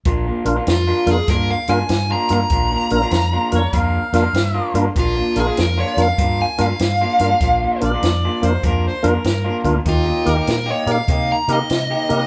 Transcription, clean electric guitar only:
X:1
M:4/4
L:1/16
Q:"Swing" 1/4=98
K:Bb
V:1 name="Clean electric guitar"
[B,,B,DF] [B,,B,DF] z [B,,B,DF] z [B,,B,DF] z2 [B,,B,DF] z [B,,B,DF] z2 [B,,B,DF] [B,,B,DF] z | [B,,B,DF] [B,,B,DF] z [B,,B,DF] z [B,,B,DF] z2 [B,,B,DF] z [B,,B,DF] z2 [B,,B,DF] [B,,B,DF] z | [B,,B,DF] [B,,B,DF] z [B,,B,DF] z [B,,B,DF] z2 [B,,B,DF] z [B,,B,DF] z2 [B,,B,DF] [B,,B,DF] z | [B,,B,DF] [B,,B,DF] z [B,,B,DF] z [B,,B,DF] z2 [B,,B,DF] z [B,,B,DF] z2 [B,,B,DF] [B,,B,DF] z |
[E,B,EG] [E,B,EG] z [E,B,EG] z [E,B,EG] z2 [E,B,EG] z [E,B,EG] z2 [E,B,EG] [E,B,EG] z |]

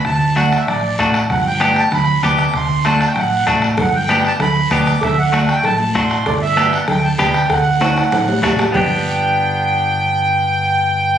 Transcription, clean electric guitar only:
X:1
M:4/4
L:1/8
Q:1/4=193
K:G
V:1 name="Clean electric guitar"
z2 [A,DF] z3 [A,DF] z | z2 [B,DG] z3 [B,DG] z | z2 [A,DF] z3 [A,DF] z | z2 [B,DG] z3 [B,DG] z |
z2 [A,DF] z3 [A,DF] z | z2 [B,DG] z3 [B,DG] z | z2 [A,DF] z3 [A,DF] z | [B,DG]8- |
[B,DG]8 |]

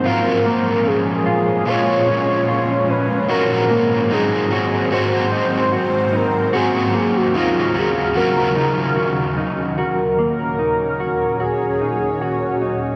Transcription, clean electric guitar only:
X:1
M:4/4
L:1/8
Q:1/4=74
K:Ebm
V:1 name="Clean electric guitar"
F B, D F F D F D | G B, E G G E G E | G B, E G G E G E | G B, E G G E G E |]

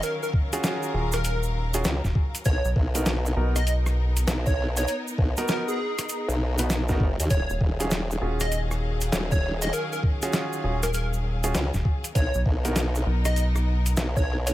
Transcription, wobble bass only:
X:1
M:4/4
L:1/16
Q:"Swing 16ths" 1/4=99
K:Ebm
V:1 name="Wobble bass" clef=bass
z12 D,, z3 | =B,,, z B,,,4 z6 B,,,4 | z2 =B,,, z6 B,,,6 ^D,, | E,,, z E,,,4 z6 E,,,4 |
z12 D,, z3 | =B,,, z B,,,4 z6 B,,,4 |]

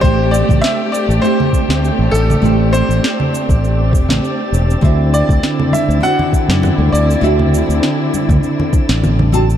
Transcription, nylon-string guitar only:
X:1
M:4/4
L:1/8
Q:"Swing 16ths" 1/4=100
K:Ador
V:1 name="Nylon-string guitar"
[A,EGc]4 [A,EGd]4 | [A,EGc]6- [A,EGc] z | [D,CFe]4 [D,CFf]4 | [D,CFe]6- [D,CFe] [D,CFa] |]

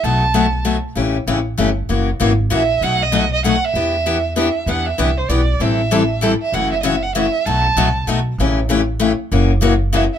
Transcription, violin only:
X:1
M:3/4
L:1/16
Q:"Swing" 1/4=194
K:Em
V:1 name="Violin"
a8 z4 | z12 | z8 e4 | f2 ^d4 d2 f2 e2- |
e8 e4 | f2 e4 c2 d4 | e8 e2 e2 | f2 e3/2 ^d/2 e2 f2 e4 |
a8 z4 | z12 | z8 e2 e2 |]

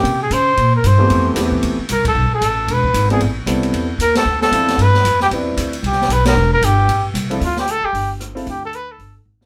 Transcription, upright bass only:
X:1
M:4/4
L:1/8
Q:"Swing" 1/4=228
K:C
V:1 name="Upright bass" clef=bass
C,2 _D,2 _B,,2 G,,2 | F,,2 E,,2 D,, z C,,2 | B,,, z A,,,2 E,,,2 ^G,,,2 | A,,,2 C,,2 E,,2 _E,,2 |
D,,2 E,,2 G,,2 F,,2 | E,,2 D,,2 C,,2 B,,,2 | E,,,2 G,,,2 A,,,2 C,,2 | D,,3 z G,,,4 |
D,,4 G,,,2 _A,,,2 |]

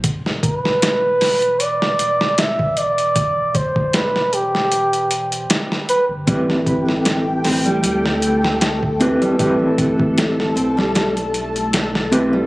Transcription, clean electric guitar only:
X:1
M:4/4
L:1/8
Q:"Swing 16ths" 1/4=77
K:Am
V:1 name="Clean electric guitar"
z8 | z8 | [CEGB]6- [CEGB] [CEGB] | [CEGB]6- [CEGB] [CEGB] |]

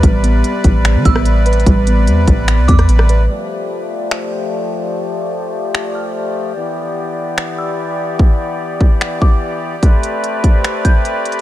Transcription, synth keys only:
X:1
M:4/4
L:1/8
Q:1/4=147
K:Am
V:1 name="Synth keys"
[G,B,B] B, G, B,2 B,2 B | G, B, G, B,2 B,2 B | z8 | z8 |
z8 | z8 | z8 |]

